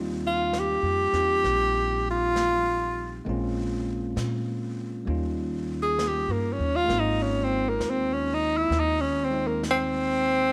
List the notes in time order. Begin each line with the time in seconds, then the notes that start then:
Already playing: D#2 G3 A#3 C4 D#4 F4
0.27 F4
0.53 brush sweep, snare, hi-hat pedal
0.60 G4
0.82 F2
1.13 E2 C4 D#4 F4, snare
1.17 G4
1.44 A#1, brush sweep, snare
2.10 F4
2.36 brush sweep, snare, hi-hat pedal
3.25 A#1 G#3 A#3 C4, brush sweep
3.29 C#4 F4
4.16 A#2, brush sweep, snare, hi-hat pedal
5.05 D#2 G3 A#3 C#4 D#4, brush sweep
5.10 F4
5.82 G#4
5.99 brush sweep, snare, hi-hat pedal
6.08 G4
6.28 G2 A#3
6.53 C#4
6.59 D#2
6.75 F4
6.84 G#3 A#3
6.89 G#1 C4, brush sweep, snare
6.93 D#4 F4
6.99 D#4
7.22 C#4
7.44 C4
7.69 A#3
7.79 D#2, brush sweep, snare, hi-hat pedal
7.90 C4
8.13 C#4
8.34 D#4
8.57 E4
8.70 D#2, brush sweep, snare
8.79 D#4
9.01 C#4
9.24 C4
9.30 G#3 C4 D#4
9.47 A#3
9.63 brush sweep, snare, hi-hat pedal
9.71 C4